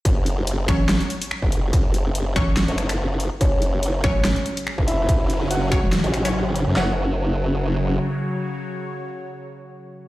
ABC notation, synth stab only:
X:1
M:4/4
L:1/16
Q:"Swing 16ths" 1/4=143
K:F#m
V:1 name="Synth stab"
z6 [F,Cc] z8 z | z6 [F,Cc] z8 z | z6 [F,Cc] z8 z | z6 [F,Cc] z4 [F,Cc] z4 |
[F,Cc]16- | [F,Cc]16 |]